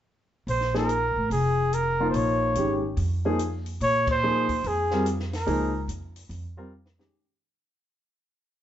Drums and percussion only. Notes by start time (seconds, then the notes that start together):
0.48 open hi-hat
0.61 snare
0.74 snare
0.89 closed hi-hat
1.31 open hi-hat
1.73 closed hi-hat
2.14 open hi-hat
2.55 closed hi-hat
2.97 open hi-hat
3.39 closed hi-hat
3.66 open hi-hat
3.81 open hi-hat
4.07 kick, ride
4.49 kick, open hi-hat
4.64 open hi-hat
4.91 snare
5.06 closed hi-hat
5.19 snare
5.33 snare, open hi-hat
5.47 open hi-hat
5.89 closed hi-hat
6.16 open hi-hat
6.31 open hi-hat
6.86 snare
7.00 snare